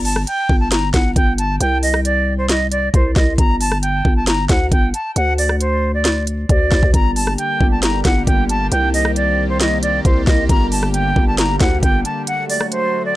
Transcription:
Already playing: G1
0.05 A5, open hi-hat
0.16 cross-stick
0.27 G5, closed hi-hat
0.49 G1, kick
0.60 A5
0.72 A#5, snare, closed hi-hat
0.94 G1 F#5, kick, snare, closed hi-hat
1.16 G1 G5, kick, closed hi-hat
1.38 A5, closed hi-hat
1.61 C2 G5, closed hi-hat
1.83 D#5, open hi-hat
1.94 cross-stick
2.05 D5, closed hi-hat
2.38 C5
2.49 D#5, snare, closed hi-hat
2.71 D5, closed hi-hat
2.94 C2 C5, kick, closed hi-hat
3.16 C2 D#5, kick, snare
3.38 G1 A#5, kick, closed hi-hat
3.61 A5, open hi-hat
3.72 cross-stick
3.82 G5, closed hi-hat
4.05 G1, kick
4.16 A5
4.27 A#5, snare, closed hi-hat
4.49 D2 F#5, kick, snare, closed hi-hat
4.72 G1 G5, kick, closed hi-hat
4.94 A5, closed hi-hat
5.16 D2 F#5, closed hi-hat
5.38 D5, open hi-hat
5.49 cross-stick
5.60 C5, closed hi-hat
5.94 D5
6.05 snare, closed hi-hat
6.27 closed hi-hat
6.49 D2 D5, kick, closed hi-hat
6.72 D2, kick, snare
6.83 D2, kick
6.94 G1 D3 G3 A#3 G4 A#5, kick, closed hi-hat
7.16 A5, open hi-hat
7.27 cross-stick
7.38 G5, closed hi-hat
7.61 G1, kick
7.71 A5
7.83 A#5, snare, closed hi-hat
8.05 G1 F#5, kick, snare, closed hi-hat
8.27 G1 G5, kick, closed hi-hat
8.49 A5, closed hi-hat
8.72 C2 D#3 C4 G4 G5, closed hi-hat
8.94 D#5, open hi-hat
9.05 cross-stick
9.16 D5, closed hi-hat
9.49 C5
9.61 D#5, snare, closed hi-hat
9.82 D5, closed hi-hat
10.05 C2 C5, kick, closed hi-hat
10.27 C2 D#5, kick, snare
10.49 G1 D3 G3 A#5, kick, closed hi-hat
10.72 A5, open hi-hat
10.83 cross-stick
10.93 G5, closed hi-hat
11.16 G1, kick
11.27 A5
11.38 A#5, snare, closed hi-hat
11.60 D2 F#5, kick, snare, closed hi-hat
11.83 G1 G5, kick, closed hi-hat
12.05 A5, closed hi-hat
12.27 F#3 A3 F#4 F#5, closed hi-hat
12.49 D5, open hi-hat
12.61 cross-stick
12.72 C5, closed hi-hat
13.05 D5

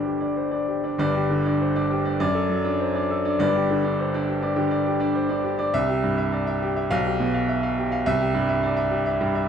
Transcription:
Already playing: G1 G2 D3 D4 G4 C5 D5
0.05 G4
0.20 D4 D5
0.36 C5
0.51 D4 D5
0.68 G4
0.84 D4 D5
0.98 G1 G2 D5
1.15 G4
1.30 D3
1.45 D4 D5
1.61 C5
1.76 D4 D5
1.91 G4
2.05 D4 D5
2.20 F#2 D5
2.35 A4
2.49 F#3
2.65 D4 D5
2.80 C5
2.95 D4 D5
3.10 A4
3.25 D4 D5
3.39 G1 G2 D5
3.55 G4
3.70 D3
3.84 D4 D5
3.99 C5
4.14 D4 D5
4.29 G4
4.42 D4 D5
4.56 D3 G4
4.71 D5
4.86 G4
5.00 D4 D5
5.15 C5
5.29 D4 D5
5.44 G4
5.59 D4 D5
5.74 C2 E5
5.89 G4
6.03 G2
6.18 E5
6.32 D5
6.47 E5
6.62 G4
6.77 E5
6.91 B1 F5
7.05 G4
7.20 B2
7.34 F5
7.49 E5
7.63 F5
7.78 G4
7.92 F5
8.06 C2 E5
8.20 G4
8.34 G2
8.49 E5
8.63 D5
8.77 E5
8.91 G4
9.06 E5
9.21 G2 G4
9.35 E5

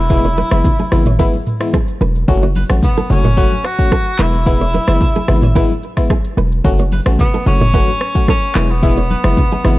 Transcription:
Already playing: E1 E4
0.10 E3 G#3 B3 E4, kick, low conga, shaker
0.24 C#5, shaker
0.37 B4, high conga, shaker
0.51 F#1 E3 G#3 B3 E4, cross-stick, high conga, shaker
0.64 kick, low conga, shaker
0.79 G#4, high conga, shaker
0.92 G#1 E3 G#3 B3 E4, cross-stick, low conga, shaker
1.06 C#5, mid tom, high conga, shaker
1.19 E3 G#3 B3 E4 B4, kick, shaker
1.34 high conga, shaker
1.47 mid tom, shaker
1.60 E3 G#3 B3 E4, cross-stick, shaker
1.73 G#4, kick, cross-stick, high conga, shaker
1.88 shaker
2.01 E1 B4, high conga, shaker
2.16 shaker
2.28 F#1 F#3 A3 C#4 F#4, kick, low conga, shaker
2.42 C#5, shaker
2.55 B4, open hi-hat, high conga
2.69 A1 F#3 A3 C#4 F#4, cross-stick, high conga, shaker
2.83 B3, kick, low conga, shaker
2.97 A4, high conga, shaker
3.10 F#1 F#3 A3 C#4 F#4, low conga, shaker
3.24 C#5, mid tom, high conga, shaker
3.37 F#3 A3 C#4 F#4 B4, kick, shaker
3.52 high conga, shaker
3.64 F#4, cross-stick, shaker
3.78 F#3 A3 C#4 F#4, kick, shaker
3.92 A4, kick, cross-stick, high conga, shaker
4.06 shaker
4.19 E1 E3 G#3 B3 E4 B4, cross-stick, clap, high conga
4.34 shaker
4.46 E3 G#3 B3 E4, kick, low conga, shaker
4.61 C#5, shaker
4.74 B4, open hi-hat, high conga
4.88 F#1 E3 G#3 B3 E4, cross-stick, high conga, shaker
5.01 kick, low conga, shaker
5.15 G#4, high conga, shaker
5.28 G#1 E3 G#3 B3 E4, cross-stick, low conga, shaker
5.42 C#5, mid tom, high conga, shaker
5.55 E3 G#3 B3 E4 B4, kick, shaker
5.70 high conga, shaker
5.83 shaker
5.97 E3 G#3 B3 E4, kick, cross-stick, shaker
6.10 G#4, kick, cross-stick, high conga, shaker
6.24 shaker
6.37 E1 B4, high conga
6.52 shaker
6.64 F#1 F#3 A3 C#4 F#4, kick, low conga, shaker
6.79 C#5, shaker
6.92 B4, open hi-hat, high conga
7.06 A1 F#3 A3 C#4 F#4, cross-stick, high conga, shaker
7.19 B3, kick, low conga, shaker
7.33 A4, high conga, shaker
7.46 F#1 F#3 A3 C#4 F#4, low conga, shaker
7.60 C#5, mid tom, high conga, shaker
7.73 F#3 A3 C#4 F#4 B4, kick, shaker
7.88 high conga, shaker
8.01 cross-stick, shaker
8.15 F#3 A3 C#4 F#4, kick, shaker
8.28 C#4 A4, kick, cross-stick, high conga, shaker
8.43 shaker
8.55 E1 E3 G#3 B3 E4 B4, cross-stick, clap, high conga
8.70 B3, shaker
8.82 E3 G#3 B3 E4, kick, low conga, shaker
8.97 C#5, shaker
9.10 B4, high conga, shaker
9.24 F#1 E3 G#3 B3 E4, cross-stick, high conga, shaker
9.37 kick, low conga, shaker
9.51 G#4, high conga, shaker
9.64 G#1 E3 G#3 B3 E4, cross-stick, low conga, shaker

